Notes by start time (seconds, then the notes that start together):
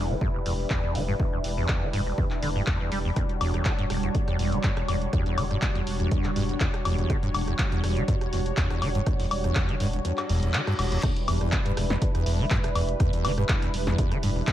Already playing: E1 E2 G3 D4 E4 B4
0.10 E3
0.21 G2, kick
0.34 E1
0.46 E1 E2, open hi-hat
0.70 E2, kick, clap
0.84 E2
0.95 E1 E3, open hi-hat
1.08 G2
1.20 E1, kick
1.33 E2
1.44 E1, open hi-hat
1.57 E2
1.68 E2, kick, clap
1.82 E3
1.93 E1 G2, open hi-hat
2.06 E1
2.18 E2, kick
2.31 clap
2.42 E1 D3, open hi-hat
2.56 G2
2.67 E2, kick, clap
2.80 E2
2.92 E1 G3, open hi-hat
3.05 E2
3.16 E2 F#4 C#5, kick, cross-stick, closed hi-hat
3.29 closed hi-hat
3.41 E1 E2, open hi-hat, high woodblock
3.54 E2, cross-stick, closed hi-hat
3.65 E3, kick, clap, closed hi-hat
3.78 G2, closed hi-hat
3.90 E1, cross-stick, open hi-hat
4.03 E2, closed hi-hat
4.15 kick, closed hi-hat
4.28 E2, cross-stick, closed hi-hat
4.39 E1 E2, open hi-hat
4.52 E3, closed hi-hat
4.63 G2, kick, clap, closed hi-hat
4.77 E1, cross-stick, closed hi-hat
4.88 E1 E2, open hi-hat, high woodblock
5.02 closed hi-hat
5.13 E2, kick, cross-stick, closed hi-hat
5.26 E2, closed hi-hat
5.38 E1 E3, open hi-hat, high woodblock
5.51 G2, cross-stick, closed hi-hat
5.62 E1, kick, clap, closed hi-hat
5.75 E2, closed hi-hat
5.87 E1, open hi-hat
6.00 E2, closed hi-hat
6.11 E2, kick, closed hi-hat
6.24 E3, cross-stick, clap, closed hi-hat
6.36 E1 G2, open hi-hat
6.49 E1, closed hi-hat
6.60 E2, kick, clap, closed hi-hat
6.74 cross-stick, closed hi-hat
6.85 E1 E2, open hi-hat, high woodblock
6.98 E2, closed hi-hat
7.10 E3, kick, cross-stick, closed hi-hat
7.23 G2, closed hi-hat
7.34 E1, open hi-hat, high woodblock
7.47 E2, cross-stick, closed hi-hat
7.59 kick, clap, closed hi-hat
7.72 E2, closed hi-hat
7.84 E1 E2, cross-stick, open hi-hat
7.97 E3, closed hi-hat
8.08 G2, kick, closed hi-hat
8.21 E1, cross-stick, closed hi-hat
8.33 E1 E2, open hi-hat
8.46 closed hi-hat
8.57 E2, kick, clap, closed hi-hat
8.70 E2, cross-stick, closed hi-hat
8.82 E1 E3, open hi-hat, high woodblock
8.95 G2, closed hi-hat
9.06 E1, kick, cross-stick, closed hi-hat
9.20 E2, open hi-hat
9.31 E1, open hi-hat, high woodblock
9.44 E2, cross-stick, closed hi-hat
9.55 E2, kick, clap, closed hi-hat
9.69 E3, closed hi-hat
9.80 E1 G2, open hi-hat
9.93 E1, closed hi-hat
10.05 E2, closed hi-hat, reverse cymbal
10.18 cross-stick, clap, closed hi-hat, high woodblock
10.29 E1 E2, open hi-hat
10.43 E2, closed hi-hat
10.54 E3, clap, closed hi-hat
10.67 G2, cross-stick, closed hi-hat
10.79 E1, open hi-hat, high woodblock
10.92 E2, closed hi-hat
11.03 E2 G3 D4 E4 B4, kick, cross-stick, closed hi-hat, crash
11.16 closed hi-hat
11.28 E1 E2, open hi-hat, high woodblock
11.41 E2, cross-stick, closed hi-hat
11.52 E3, kick, clap, closed hi-hat
11.65 G2, closed hi-hat
11.77 E1, cross-stick, open hi-hat
11.90 E2, snare, closed hi-hat
12.02 kick, closed hi-hat
12.15 E2, cross-stick, closed hi-hat
12.26 E1 E2, open hi-hat
12.39 E3
12.50 G2, kick, clap, closed hi-hat
12.64 E1, cross-stick, closed hi-hat
12.75 E1 E2, open hi-hat, high woodblock
12.89 closed hi-hat
13.00 E2, kick, cross-stick, closed hi-hat
13.13 E2, closed hi-hat
13.24 E1 E3, open hi-hat, high woodblock
13.38 G2, cross-stick, closed hi-hat
13.49 E1, kick, clap, closed hi-hat
13.62 E2, closed hi-hat
13.74 E1, open hi-hat
13.87 E2, snare, closed hi-hat
13.98 kick, closed hi-hat
14.11 E3, cross-stick, closed hi-hat
14.23 E1 G2, open hi-hat
14.36 E1
14.47 E2, kick, clap, closed hi-hat